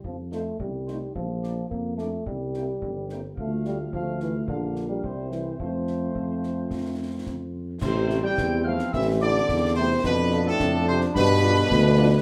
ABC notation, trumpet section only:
X:1
M:2/4
L:1/16
Q:1/4=108
K:F
V:1 name="Trumpet section"
z2 c2 z2 c2 | z2 d2 z2 d2 | z2 g2 z2 g2 | f4 f4 |
f4 c4 | c8- | c6 z2 | [K:Am] c3 g3 f2 |
e2 d4 c2 | B3 A3 c2 | B8 |]